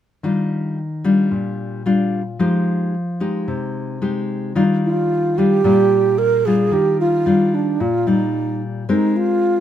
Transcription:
0.23 1.29 D#3 medium
0.23 0.77 G3 medium
0.23 0.78 D4 medium
0.23 0.78 F4 medium
1.04 1.81 G3 medium
1.04 1.82 D4 medium
1.04 1.82 F4 medium
1.31 2.37 A#2 medium
1.86 2.21 G3 soft
1.86 2.21 D4 medium
1.86 2.21 F4 medium
2.39 3.45 F3 medium
2.39 2.93 G#3 soft
2.39 2.94 D#4 medium
2.39 2.94 G4 medium
3.20 3.98 G#3 medium
3.20 3.98 D#4 soft
3.20 3.98 G4 medium
3.48 4.53 C3 medium
4.02 4.52 G#3 soft
4.02 4.52 D#4 medium
4.02 4.52 G4 medium
4.55 5.61 D#3 medium
4.55 5.33 G3 medium
4.55 5.33 D4 medium
4.55 4.63 D#4 medium
4.55 5.33 F4 medium
4.84 5.39 F4 medium
5.38 5.60 G3 medium
5.38 5.61 D4 medium
5.38 5.61 F4 medium
5.38 6.20 G4 medium
5.64 6.70 A#2 medium
5.64 6.41 G3 medium
5.64 6.41 D4 medium
5.64 6.41 F4 medium
6.18 6.47 A#4 loud
6.46 7.23 G3 medium
6.46 7.23 D4 medium
6.46 7.23 F4 medium
6.46 6.75 G#4 medium
6.71 7.77 D#3 medium
6.71 7.00 G4 medium
7.00 7.56 F4 medium
7.26 7.80 G3 soft
7.26 7.80 D4 soft
7.26 7.80 F4 medium
7.54 7.82 D4 medium
7.80 8.86 A#2 medium
7.80 8.09 F4 medium
8.07 8.84 G3 medium
8.07 8.62 D#4 medium
8.07 8.84 F4 medium
8.89 9.60 G#3 medium
8.89 9.60 C4 medium
8.89 9.18 D#4 medium
8.89 9.60 G4 medium
8.89 9.60 A#4 medium
9.17 9.60 F4 medium

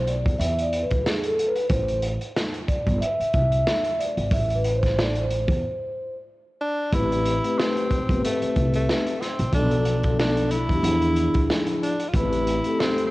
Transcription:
0.00 0.22 B1 loud
0.07 0.41 D5 medium
0.07 closed hi-hat medium
0.26 0.38 E2 medium
0.26 kick loud
0.26 closed hi-hat soft
0.39 0.85 E2 loud
0.39 0.62 E5 loud
0.39 closed hi-hat loud
0.59 0.82 D5 loud
0.59 closed hi-hat soft
0.73 closed hi-hat medium
0.82 1.03 B4 medium
0.91 1.03 D2 medium
0.91 kick medium
0.91 closed hi-hat medium
1.04 1.27 G#4 medium
1.04 snare loud
1.23 1.49 A4 medium
1.23 closed hi-hat medium
1.39 closed hi-hat medium
1.48 1.58 B4 loud
1.56 closed hi-hat medium
1.68 2.15 A1 loud
1.68 2.00 C5 medium
1.68 kick loud
1.68 closed hi-hat medium
1.88 closed hi-hat medium
2.02 closed hi-hat medium
2.21 closed hi-hat medium
2.37 snare loud
2.54 closed hi-hat medium
2.68 3.02 D5 medium
2.68 kick medium
2.68 closed hi-hat medium
2.87 2.99 G1 loud
2.87 kick medium
2.87 closed hi-hat soft
3.01 3.31 E5 loud
3.01 closed hi-hat loud
3.20 muted upright bass stroke soft
3.20 closed hi-hat soft
3.34 3.62 C2 medium
3.34 4.01 E5 loud
3.34 kick medium
3.34 closed hi-hat medium
3.52 closed hi-hat soft
3.67 snare loud
3.84 closed hi-hat medium
3.99 4.33 D5 loud
3.99 closed hi-hat medium
4.17 4.29 G#1 medium
4.17 closed hi-hat medium
4.31 5.44 A1 loud
4.31 4.55 E5 loud
4.31 kick loud
4.31 closed hi-hat medium
4.50 closed hi-hat medium
4.55 4.74 B4 medium
4.64 closed hi-hat medium
4.76 4.98 C5 medium
4.83 kick medium
4.83 snare soft
4.83 closed hi-hat medium
4.97 5.19 D5 medium
4.97 snare loud
5.15 closed hi-hat medium
5.20 6.13 C5 medium
5.30 closed hi-hat medium
5.48 5.60 E2 loud
5.48 kick medium
5.48 closed hi-hat soft
6.61 6.96 D4 loud
6.92 7.38 A1 loud
6.92 7.30 A3 medium
6.92 7.31 C4 medium
6.92 7.60 E4 loud
6.92 7.31 G4 medium
6.92 7.31 B4 medium
6.92 kick loud
6.92 closed hi-hat medium
7.12 closed hi-hat soft
7.25 closed hi-hat medium
7.43 7.90 A3 medium
7.43 7.91 C4 medium
7.43 7.91 G4 medium
7.43 7.92 B4 medium
7.43 closed hi-hat soft
7.58 8.23 C4 loud
7.58 snare loud
7.77 closed hi-hat medium
7.91 kick medium
7.91 closed hi-hat medium
8.09 8.21 G1 loud
8.09 9.08 A3 medium
8.09 9.08 C4 medium
8.09 9.09 G4 medium
8.09 9.09 B4 medium
8.09 kick medium
8.09 closed hi-hat soft
8.24 8.72 A3 medium
8.24 closed hi-hat loud
8.42 muted upright bass stroke soft
8.42 closed hi-hat soft
8.56 8.84 C2 medium
8.56 kick medium
8.56 closed hi-hat medium
8.73 9.23 A3 medium
8.73 closed hi-hat soft
8.89 snare medium
9.07 closed hi-hat medium
9.21 9.53 C4 medium
9.21 snare soft
9.21 closed hi-hat medium
9.39 9.51 A#1 medium
9.39 closed hi-hat medium
9.52 10.66 B1 loud
9.52 9.91 F3 medium
9.52 9.91 B3 medium
9.52 9.91 D4 medium
9.52 10.15 D4 medium
9.52 9.92 A4 medium
9.52 kick loud
9.52 closed hi-hat medium
9.71 closed hi-hat soft
9.85 closed hi-hat medium
10.03 10.51 F3 medium
10.03 10.51 B3 medium
10.03 10.52 D4 medium
10.03 10.52 A4 medium
10.03 kick medium
10.03 closed hi-hat soft
10.19 10.53 D4 medium
10.19 snare loud
10.37 closed hi-hat medium
10.51 11.56 E4 loud
10.51 closed hi-hat medium
10.69 10.81 E2 medium
10.69 10.81 F3 medium
10.69 10.84 B3 medium
10.69 10.82 D4 medium
10.69 10.85 G4 medium
10.69 kick medium
10.69 closed hi-hat soft
10.82 11.29 E2 loud
10.82 11.88 F3 medium
10.82 11.89 D4 medium
10.82 11.89 E4 medium
10.82 11.90 G#4 medium
10.82 closed hi-hat loud
11.02 closed hi-hat soft
11.16 closed hi-hat medium
11.34 11.47 D2 medium
11.34 kick loud
11.34 closed hi-hat medium
11.50 snare loud
11.66 closed hi-hat medium
11.82 12.10 D4 medium
11.82 closed hi-hat medium
12.00 closed hi-hat medium
12.09 12.17 F4 medium
12.14 12.59 A1 loud
12.14 12.52 A3 medium
12.14 12.52 C4 medium
12.14 12.82 E4 loud
12.14 12.53 G4 medium
12.14 12.53 B4 medium
12.14 kick loud
12.14 closed hi-hat medium
12.33 closed hi-hat soft
12.47 closed hi-hat medium
12.64 13.11 A3 medium
12.64 13.11 C4 medium
12.64 13.11 G4 medium
12.64 13.11 A4 medium
12.64 closed hi-hat soft
12.80 13.06 C4 medium
12.80 snare loud
12.98 closed hi-hat medium
13.07 13.11 C4 medium

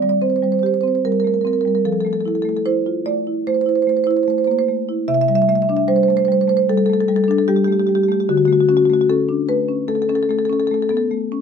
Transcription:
0.00 0.17 D#3 medium
0.00 0.34 G3 soft
0.00 0.14 C4 soft
0.00 0.09 D5 medium
0.09 0.19 D5 medium
0.21 0.54 C4 soft
0.21 0.30 C5 medium
0.30 0.36 C5 medium
0.36 0.44 C5 medium
0.43 0.75 G3 soft
0.43 0.52 C5 medium
0.52 0.59 C5 medium
0.59 0.95 G4 medium
0.59 0.66 C5 medium
0.66 0.74 C5 medium
0.74 0.81 C5 medium
0.81 1.16 C4 soft
0.81 0.88 C5 medium
0.88 0.95 C5 medium
0.95 1.00 C5 medium
1.05 1.37 G3 soft
1.05 1.12 A#4 medium
1.12 1.20 A#4 medium
1.20 1.27 A#4 medium
1.24 1.44 A3 soft
1.24 1.34 A#4 medium
1.34 1.41 A#4 medium
1.41 1.77 C4 soft
1.41 1.47 A#4 medium
1.47 1.53 A#4 medium
1.53 1.61 A#4 medium
1.61 1.68 A#4 medium
1.65 1.85 G3 soft
1.65 1.75 A#4 medium
1.75 1.82 A#4 medium
1.85 3.43 F3 medium
1.85 1.93 A4 medium
1.93 2.01 A4 medium
2.01 2.06 A4 medium
2.05 2.37 A3 soft
2.05 2.13 A4 medium
2.13 2.21 A4 medium
2.21 2.28 A4 medium
2.25 2.57 E4 soft
2.25 2.35 A4 medium
2.35 2.42 A4 medium
2.42 2.77 A3 soft
2.42 2.49 A4 medium
2.49 2.57 A4 medium
2.57 2.62 A4 medium
2.65 2.98 E4 medium
2.65 3.05 C5 medium
2.86 3.06 F4 soft
3.06 3.38 A3 soft
3.06 3.45 D5 medium
3.27 3.59 E4 soft
3.47 3.79 A3 medium
3.47 3.54 C5 medium
3.54 3.61 C5 medium
3.61 3.69 C5 medium
3.66 3.99 E4 soft
3.66 3.75 C5 medium
3.75 3.82 C5 medium
3.82 3.89 C5 medium
3.87 4.20 A3 medium
3.87 3.97 C5 medium
3.97 4.04 C5 medium
4.04 4.40 E4 medium
4.04 4.11 C5 medium
4.11 4.17 C5 medium
4.17 4.23 C5 medium
4.23 4.30 C5 medium
4.28 4.60 A3 medium
4.28 4.38 C5 medium
4.38 4.44 C5 medium
4.44 4.68 A#3 soft
4.44 4.51 C5 medium
4.51 4.59 C5 medium
4.59 4.65 C5 medium
4.68 5.01 A3 soft
4.89 5.09 E4 soft
5.08 6.64 C3 medium
5.08 5.14 E5 medium
5.14 5.21 E5 medium
5.21 5.28 E5 medium
5.28 5.61 G3 medium
5.28 5.35 E5 medium
5.35 5.42 E5 medium
5.42 5.49 E5 medium
5.49 5.81 A3 medium
5.49 5.55 E5 medium
5.55 5.62 E5 medium
5.62 5.70 E5 medium
5.69 6.01 D4 medium
5.69 5.77 E5 medium
5.77 5.85 E5 medium
5.88 6.20 G3 medium
5.88 5.96 C5 medium
5.96 6.03 C5 medium
6.03 6.10 C5 medium
6.08 6.28 A3 medium
6.08 6.17 C5 medium
6.17 6.25 C5 medium
6.25 6.60 G3 medium
6.25 6.32 C5 medium
6.32 6.41 C5 medium
6.41 6.49 C5 medium
6.48 6.80 A3 soft
6.48 6.57 C5 medium
6.57 6.65 C5 medium
6.69 7.01 G3 medium
6.69 6.78 A4 medium
6.78 6.86 A4 medium
6.86 7.21 A3 medium
6.86 6.93 A4 medium
6.93 7.01 A4 medium
7.01 7.08 A4 medium
7.08 7.41 G3 medium
7.08 7.16 A4 medium
7.16 7.24 A4 medium
7.24 7.31 A4 medium
7.28 7.60 D4 medium
7.28 7.38 A4 medium
7.38 7.46 A4 medium
7.48 7.81 G3 medium
7.48 7.56 G4 medium
7.56 7.64 G4 medium
7.64 7.88 A3 medium
7.64 7.72 G4 medium
7.72 7.79 G4 medium
7.79 7.87 G4 medium
7.87 8.21 G3 soft
7.87 7.95 G4 medium
7.95 8.03 G4 medium
8.03 8.12 G4 medium
8.08 8.29 A3 medium
8.08 8.20 G4 medium
8.20 8.25 G4 medium
8.29 9.86 D3 medium
8.29 8.38 F#4 medium
8.38 8.45 F#4 medium
8.45 8.81 A3 medium
8.45 8.53 F#4 medium
8.53 8.60 F#4 medium
8.60 8.69 F#4 medium
8.69 9.01 C#4 medium
8.69 8.77 F#4 medium
8.77 8.85 F#4 medium
8.85 8.94 F#4 medium
8.90 9.21 A3 medium
8.90 9.01 F#4 medium
9.01 9.06 F#4 medium
9.09 9.41 C#4 medium
9.09 9.48 A4 medium
9.29 9.49 D4 medium
9.49 9.81 A3 medium
9.49 9.87 B4 medium
9.69 10.01 C#4 medium
9.88 10.21 A3 medium
9.88 9.95 A4 medium
9.95 10.02 A4 medium
10.02 10.09 A4 medium
10.09 10.42 C#4 medium
10.09 10.15 A4 medium
10.15 10.23 A4 medium
10.23 10.31 A4 medium
10.29 10.62 A3 medium
10.29 10.39 A4 medium
10.39 10.45 A4 medium
10.45 10.53 A4 medium
10.50 10.82 C#4 medium
10.50 10.59 A4 medium
10.59 10.67 A4 medium
10.67 11.03 A3 medium
10.67 10.74 A4 medium
10.74 10.82 A4 medium
10.82 10.89 A4 medium
10.89 11.11 B3 soft
10.89 10.97 A4 medium
10.97 11.06 A4 medium
11.11 11.41 A3 medium
11.32 11.41 C#4 medium

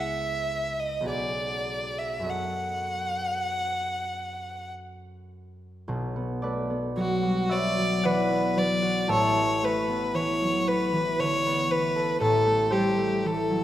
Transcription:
0.00 1.09 C#2 soft
0.00 1.01 B3 soft
0.00 1.11 E4 soft
0.00 1.04 G#4 soft
0.00 1.12 D#5 soft
0.00 0.81 E5 medium
0.80 1.09 D#5 soft
1.01 2.29 B1 soft
1.01 2.30 B3 soft
1.01 2.22 F#4 soft
1.06 2.32 G#4 soft
1.06 2.33 D5 soft
1.06 2.00 D5 medium
1.98 2.31 E5 soft
2.20 5.89 F#2 soft
2.20 6.11 C#4 soft
2.20 6.13 F#4 soft
2.25 5.92 A4 soft
2.25 5.92 D#5 soft
2.29 4.72 F#5 medium
5.88 9.15 B1 medium
5.88 9.15 B2 medium
6.16 6.69 B3 soft
6.42 6.89 A3 soft
6.42 10.34 B4 medium
6.42 8.04 D5 medium
6.70 7.49 B3 soft
6.96 7.77 F#3 soft
6.96 7.53 F#4 medium
7.23 7.69 G3 soft
7.49 8.29 B3 soft
7.49 11.41 C#5 medium
7.49 8.07 D5 medium
7.49 8.41 E5 medium
7.78 8.55 F#3 soft
8.03 8.50 E3 soft
8.03 8.59 B4 medium
8.03 9.15 D5 medium
8.03 9.14 F#5 medium
8.30 9.35 B3 soft
8.56 9.14 F#3 soft
8.56 9.11 D5 medium
8.82 9.14 F#4 soft
9.08 12.19 A1 medium
9.08 12.20 A2 medium
9.08 9.65 C#5 medium
9.08 12.99 E5 medium
9.08 12.99 A5 medium
9.36 9.87 B3 soft
9.63 10.07 A3 soft
9.63 10.16 B4 medium
9.88 10.66 B3 medium
10.14 10.92 E3 soft
10.14 10.69 C#5 medium
10.41 10.86 F#3 soft
10.67 11.45 B3 soft
10.67 11.21 B4 medium
10.93 11.70 E3 soft
11.19 11.63 D3 soft
11.19 11.72 C#5 medium
11.46 13.64 B3 soft
11.71 12.26 E3 soft
11.71 12.21 B4 medium
11.96 12.70 A4 soft
12.20 13.64 A1 medium
12.20 13.64 A2 medium
12.20 12.73 A4 medium
12.46 12.97 A3 soft
12.70 13.17 G3 soft
12.70 13.28 G4 medium
12.70 13.64 A4 medium
12.70 13.64 C5 medium
12.98 13.64 A3 medium
13.24 13.64 E3 medium
13.24 13.64 A4 medium
13.50 13.64 F#3 soft

